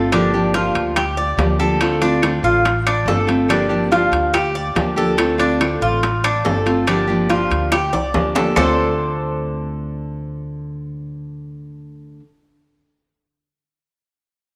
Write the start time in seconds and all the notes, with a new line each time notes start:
Already playing: G1 A3 C4 F4 A4
0.12 D3 F3 A#3 D4 G4, high bongo, high timbale
0.34 F3 A#3 D4 G4, high bongo
0.54 F3 A#3 D4 F4 G4, high bongo, high timbale, low timbale
0.75 D2, high bongo, high timbale
0.96 G4, muted nylon-string guitar stroke, high bongo, high timbale
1.17 D5, high bongo
1.37 D2 F3 A#3 D4 G4, high bongo, low bongo, high timbale, low timbale
1.59 F3 A#3 D4 G4 A4
1.81 D3 A3 C4 F4, high bongo, high timbale, claves
2.02 A3 C4 D4 F4, high bongo, high timbale
2.22 D3 A3 C4 F4, high bongo, high timbale, low timbale, claves
2.43 A1 F4, high bongo
2.65 muted nylon-string guitar stroke, high bongo, high timbale
2.87 D4, high bongo, high timbale, claves
3.06 G1 D3 A3 C4 F4 A4, high bongo, low bongo, low timbale
3.27 A3 C4 F4, high timbale
3.48 D3 F3 A#3 D4 G4, high bongo, high timbale, claves
3.69 F3 A#3 D4 G4, high bongo
3.91 F3 A#3 D4 F4 G4, high bongo, high timbale, low timbale
4.12 D2, high bongo, high timbale
4.34 G4, muted nylon-string guitar stroke, high bongo, high timbale, claves
4.55 D5, high bongo
4.75 D2 F3 A#3 D4 G4, high bongo, low bongo, high timbale, low timbale
4.96 F3 A#3 D4 G4 A4
5.17 D3 A3 C4 F4, high bongo, high timbale, claves
5.38 A3 C4 D4 F4, high bongo, high timbale
5.61 D3 A3 C4 F4, high bongo, high timbale, low timbale, claves
5.81 A1 F4, high bongo
6.03 muted nylon-string guitar stroke, high bongo, high timbale
6.24 D4, high bongo, high timbale, claves
6.45 G1 D3 A3 C4 F4 A4, high bongo, low bongo, low timbale
6.66 A3 C4 F4, high timbale
6.87 D3 F3 A#3 D4 G4, high bongo, high timbale, claves
7.07 F3 A#3 D4 G4, high bongo
7.29 F3 A#3 D4 F4 G4, high bongo, high timbale, low timbale
7.51 D2, high bongo, high timbale
7.72 G4, muted nylon-string guitar stroke, high bongo, high timbale, claves
7.93 C2 D5, low bongo, high timbale
8.14 D2 F3 A#3 D4 G4, low bongo, low timbale
8.35 F3 A#3 D4 G4 A4, low bongo, low timbale
8.56 D2 D3 A3 C4 D4 F4 A4 C5, low bongo, low timbale, claves